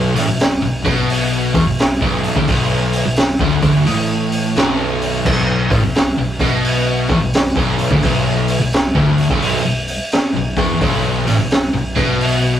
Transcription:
0.00 0.12 B0 medium
0.00 0.14 B1 loud
0.14 0.27 A1 loud
0.14 0.26 A2 medium
0.14 snare soft
0.14 open hi-hat medium
0.27 0.60 B0 medium
0.27 0.53 B1 medium
0.39 snare loud
0.39 open hi-hat medium
0.61 0.83 B0 medium
0.61 0.84 B1 medium
0.83 1.50 B1 medium
0.83 1.52 B2 loud
0.83 kick loud
0.83 open hi-hat medium
1.09 open hi-hat medium
1.54 1.65 E1 loud
1.54 1.65 E2 loud
1.54 kick loud
1.54 open hi-hat medium
1.66 1.99 B0 medium
1.66 1.92 B1 medium
1.78 snare loud
1.78 open hi-hat medium
2.00 2.33 B0 loud
2.00 2.34 B1 loud
2.00 kick loud
2.23 open hi-hat medium
2.35 2.47 D1 medium
2.35 2.47 D2 loud
2.35 kick loud
2.47 3.01 B0 medium
2.47 3.04 B1 loud
2.47 kick loud
2.47 open hi-hat medium
2.93 open hi-hat medium
3.05 3.37 B0 medium
3.05 3.31 B1 medium
3.16 snare loud
3.16 open hi-hat medium
3.39 3.61 D1 loud
3.39 3.61 D2 medium
3.39 kick loud
3.62 3.85 D1 medium
3.62 3.86 D2 loud
3.62 kick loud
3.62 open hi-hat medium
3.86 4.52 A1 loud
3.86 4.55 A2 loud
3.86 open hi-hat medium
4.32 open hi-hat medium
4.56 5.21 B0 medium
4.56 5.24 B1 loud
4.56 snare loud
4.56 open hi-hat medium
5.01 open hi-hat medium
5.25 5.67 B0 medium
5.25 5.69 B1 loud
5.25 kick loud
5.25 crash loud
5.70 5.82 A1 loud
5.70 5.82 A2 loud
5.70 kick loud
5.70 open hi-hat medium
5.82 6.15 B0 medium
5.82 6.08 B1 medium
5.94 snare loud
5.94 open hi-hat medium
6.17 6.38 B0 medium
6.17 6.40 B1 medium
6.39 7.05 B1 medium
6.39 7.08 B2 medium
6.39 kick loud
6.39 open hi-hat medium
6.64 open hi-hat loud
7.09 7.20 E1 loud
7.09 7.20 E2 medium
7.09 kick loud
7.09 open hi-hat medium
7.21 7.54 B0 medium
7.21 7.47 B1 medium
7.33 snare loud
7.33 open hi-hat medium
7.55 7.88 B0 loud
7.55 7.89 B1 loud
7.55 kick loud
7.78 open hi-hat medium
7.90 8.02 D1 medium
7.90 8.01 D2 loud
7.90 kick loud
8.01 8.56 B0 medium
8.01 8.58 B1 loud
8.01 kick loud
8.01 open hi-hat medium
8.48 open hi-hat medium
8.59 8.93 B0 medium
8.59 8.86 B1 medium
8.72 snare loud
8.72 open hi-hat medium
8.95 9.27 D1 loud
8.95 9.29 D2 medium
8.95 kick loud
9.18 open hi-hat medium
9.29 9.62 B0 medium
9.29 9.63 B1 loud
9.29 kick loud
9.42 open hi-hat medium
9.64 9.97 B0 medium
9.64 9.94 B1 medium
9.87 open hi-hat medium
10.11 snare loud
10.11 open hi-hat medium
10.33 10.55 B0 medium
10.33 10.56 B1 medium
10.56 10.80 E1 loud
10.56 10.80 E2 loud
10.56 kick loud
10.56 open hi-hat medium
10.81 11.23 B0 medium
10.81 11.25 B1 loud
10.81 kick loud
10.81 open hi-hat medium
11.26 11.38 A1 loud
11.26 11.38 A2 loud
11.26 snare soft
11.26 open hi-hat medium
11.38 11.71 B0 medium
11.38 11.64 B1 medium
11.50 snare loud
11.50 open hi-hat medium
11.73 11.94 B0 medium
11.73 11.96 B1 medium
11.96 12.60 B1 medium
11.96 12.60 B2 loud
11.96 kick medium
11.96 open hi-hat medium
12.20 open hi-hat medium

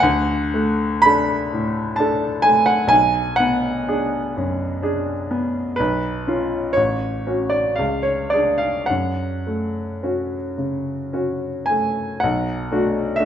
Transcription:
0.00 2.89 D2 medium
0.00 1.03 F#5 medium
0.54 1.34 A3 soft
1.02 1.49 D4 soft
1.02 1.98 B5 medium
1.06 1.49 A4 soft
1.53 2.28 A2 soft
1.96 2.42 D4 soft
1.96 2.43 A4 soft
1.96 2.45 A5 medium
2.42 2.93 A3 soft
2.42 2.68 G#5 medium
2.66 2.91 F#5 medium
2.87 5.72 B1 medium
2.87 3.38 G#5 medium
3.36 4.17 B3 soft
3.36 5.77 F#5 medium
3.88 4.32 D4 soft
3.88 4.32 G#4 soft
4.37 5.12 F#2 soft
4.83 5.26 D4 soft
4.83 5.27 G#4 soft
5.31 5.79 B3 soft
5.76 6.75 B1 soft
5.76 6.76 B4 medium
6.27 6.73 C#4 soft
6.27 6.73 F4 soft
6.73 7.76 A1 soft
6.73 7.51 C#5 medium
7.27 7.75 C#4 soft
7.27 7.75 F#4 soft
7.50 7.78 D5 medium
7.76 8.85 C#2 soft
7.76 8.04 F5 medium
8.03 8.31 C#5 medium
8.30 8.85 D4 soft
8.30 8.85 G#4 soft
8.30 8.59 D5 medium
8.58 8.88 F5 medium
8.86 12.20 F#2 soft
8.86 11.12 F#5 medium
9.47 10.36 A3 soft
10.03 10.54 C#4 soft
10.03 10.55 F#4 soft
10.58 11.47 C#3 soft
11.13 11.66 C#4 soft
11.13 11.66 F#4 soft
11.66 12.23 A3 soft
11.66 12.21 G#5 medium
12.20 12.71 B1 medium
12.20 13.18 F#5 medium
12.72 13.15 A3 soft
12.72 13.15 D4 soft
12.72 13.16 F#4 soft
13.16 13.25 A3 soft
13.16 13.25 D4 soft
13.16 13.25 E5 medium
13.20 13.25 F#4 soft

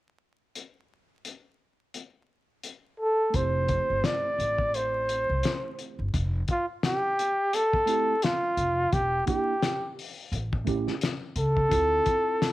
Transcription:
0.56 closed hi-hat soft
1.25 closed hi-hat soft
1.94 closed hi-hat soft
2.64 closed hi-hat soft
3.00 3.37 A4 medium
3.30 3.77 F1 loud
3.30 6.07 A3 medium
3.30 6.09 C4 soft
3.30 closed hi-hat medium
3.34 6.10 E4 soft
3.34 6.11 G4 soft
3.34 4.07 C5 medium
3.34 kick medium
3.68 kick medium
3.68 closed hi-hat medium
3.90 4.01 G1 medium
4.04 4.76 D5 loud
4.04 snare loud
4.04 closed hi-hat medium
4.39 5.25 A1 medium
4.39 closed hi-hat medium
4.58 kick medium
4.74 5.79 C5 medium
4.74 closed hi-hat medium
5.09 closed hi-hat medium
5.29 5.40 C2 medium
5.43 snare loud
5.43 closed hi-hat medium
5.79 closed hi-hat medium
5.99 6.10 G1 medium
6.14 6.41 F1 loud
6.14 kick loud
6.14 closed hi-hat medium
6.48 6.66 F4 medium
6.48 kick medium
6.48 closed hi-hat medium
6.83 7.56 G4 loud
6.83 snare loud
6.83 closed hi-hat medium
7.19 closed hi-hat medium
7.53 8.25 A4 loud
7.53 closed hi-hat loud
7.73 kick medium
7.86 8.13 A3 medium
7.86 8.14 C4 medium
7.86 8.14 E4 medium
7.86 8.15 G4 medium
7.86 closed hi-hat medium
8.22 8.94 F4 medium
8.22 snare loud
8.22 closed hi-hat loud
8.57 8.84 F1 medium
8.57 closed hi-hat medium
8.92 9.19 E1 medium
8.92 9.26 G4 loud
8.92 kick loud
8.92 closed hi-hat medium
9.26 9.53 A#3 medium
9.26 9.53 D4 medium
9.26 9.54 E4 medium
9.26 9.93 G4 medium
9.26 9.55 G4 medium
9.26 kick medium
9.26 closed hi-hat medium
9.63 snare loud
9.63 closed hi-hat medium
9.99 open hi-hat medium
10.32 10.86 A1 medium
10.32 closed hi-hat medium
10.53 kick medium
10.65 10.92 A3 medium
10.65 10.93 C#4 medium
10.65 10.93 E4 medium
10.65 10.94 G4 medium
10.65 kick loud
10.65 closed hi-hat medium
10.88 snare soft
11.01 snare loud
11.01 closed hi-hat medium
11.36 11.63 C#2 medium
11.36 12.52 A4 loud
11.36 closed hi-hat medium
11.57 kick medium
11.69 11.98 D2 medium
11.69 12.52 C4 medium
11.69 12.52 E4 soft
11.69 12.52 F4 soft
11.69 12.52 A4 medium
11.69 kick loud
11.69 closed hi-hat medium
12.06 kick medium
12.06 closed hi-hat medium
12.42 snare loud
12.42 closed hi-hat medium

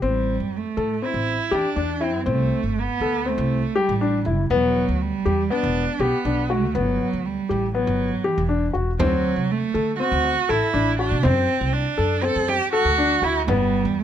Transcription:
0.02 0.37 A1 medium
0.02 0.57 G3 medium
0.02 0.34 C4 medium
0.40 0.63 F#2 medium
0.56 1.07 A3 medium
0.77 1.00 A2 medium
0.77 0.93 A4 medium
1.02 1.34 C4 medium
1.02 1.56 E4 medium
1.14 1.37 A1 medium
1.51 1.63 E2 medium
1.51 2.05 D4 medium
1.51 1.68 G4 medium
1.76 2.14 E2 medium
1.76 1.92 D4 medium
2.01 2.27 C4 medium
2.01 2.17 E4 medium
2.14 2.28 F#2 medium
2.26 2.49 C2 medium
2.26 2.79 A3 medium
2.26 2.58 C4 medium
2.63 2.87 G1 medium
2.78 3.30 B3 medium
3.00 3.35 D2 medium
3.00 3.17 A4 medium
3.26 3.80 A3 medium
3.26 3.58 C4 medium
3.38 3.61 C2 loud
3.76 4.33 G3 medium
3.76 3.92 G4 loud
3.89 4.26 A1 medium
4.01 4.17 D4 medium
4.25 4.48 F#1 medium
4.25 4.42 E4 medium
4.50 4.85 E1 medium
4.50 5.03 F#3 medium
4.50 4.83 B3 loud
4.89 5.11 D2 medium
5.01 5.53 G3 loud
5.25 5.49 E2 medium
5.25 5.42 G4 medium
5.50 5.82 B3 medium
5.50 6.03 D4 medium
5.63 5.86 E1 loud
6.00 6.11 B1 medium
6.00 6.53 B3 medium
6.00 6.16 G4 medium
6.25 6.62 B1 medium
6.25 6.41 D4 medium
6.50 6.77 A3 medium
6.50 6.66 F#4 medium
6.62 6.76 D2 medium
6.75 6.98 G1 medium
6.75 7.27 F#3 medium
6.75 7.07 B3 medium
7.13 7.36 D2 medium
7.26 7.75 G3 medium
7.49 7.84 A1 medium
7.49 7.66 G4 medium
7.75 8.27 F#3 medium
7.75 8.07 B3 medium
7.87 8.10 G1 medium
8.24 8.81 E3 medium
8.24 8.40 G4 medium
8.38 8.72 E1 medium
8.49 8.65 D4 medium
8.73 8.97 E1 medium
8.73 8.90 F#4 medium
8.99 9.34 D2 medium
8.99 9.52 F#3 loud
8.99 9.31 C4 loud
8.99 frame drum medium
9.36 9.59 C3 medium
9.51 9.99 A3 loud
9.74 9.97 D3 medium
9.74 9.90 A4 medium
9.74 frame drum soft
9.99 10.31 C4 medium
9.99 10.51 F#4 loud
10.12 10.35 D2 medium
10.24 frame drum soft
10.49 10.61 A1 medium
10.49 10.99 E4 loud
10.49 10.65 A4 medium
10.73 11.13 A1 medium
10.73 10.90 D4 medium
10.99 11.25 D4 loud
10.99 11.15 F#4 medium
10.99 frame drum soft
11.12 11.26 C3 medium
11.23 11.47 F#2 medium
11.23 11.55 C4 medium
11.23 11.75 C4 loud
11.23 frame drum medium
11.61 11.84 C2 medium
11.73 12.25 D4 medium
11.98 12.33 F#2 medium
11.98 12.14 A4 medium
11.98 frame drum soft
12.22 12.54 C4 medium
12.22 12.50 A4 loud
12.36 12.59 F#2 medium
12.48 12.73 G4 loud
12.48 frame drum medium
12.73 13.25 F#4 loud
12.73 12.89 A4 medium
12.85 13.20 D2 medium
12.98 13.14 D4 medium
13.22 13.45 D2 medium
13.22 13.47 E4 loud
13.22 13.39 F#4 medium
13.48 13.82 G1 loud
13.48 14.00 G3 loud
13.48 13.80 B3 loud
13.48 frame drum medium
13.85 14.03 E2 medium
13.99 14.03 A3 loud

